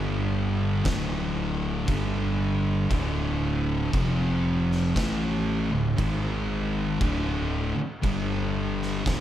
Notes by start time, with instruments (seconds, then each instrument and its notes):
Already playing: fingered electric bass G1, distorted electric guitar G2 D3 G3
0.85 fingered electric bass D1, distorted electric guitar D2 A2 D3, kick, snare, crash
1.87 fingered electric bass G1, distorted electric guitar G2 D3 G3, kick, crash
2.90 fingered electric bass D1, distorted electric guitar D2 A2 D3, kick, crash
3.93 fingered electric bass F1, distorted electric guitar F2 C3 F3, kick, crash
4.72 snare
4.95 fingered electric bass A1, distorted electric guitar A2 E3 A3, kick, snare, crash
5.72 fingered electric bass D1, distorted electric guitar D2 A2
5.97 fingered electric bass G#1, distorted electric guitar G#2 D#3 G#3, kick, crash
7.00 fingered electric bass D1, distorted electric guitar D2 A2 D3, kick, crash
7.77 muted distorted electric guitar stroke, muted fingered electric bass stroke
8.02 fingered electric bass G1, distorted electric guitar G2 D3 G3, kick, crash
8.82 snare
9.05 fingered electric bass D1, distorted electric guitar D2 A2 D3, kick, snare, crash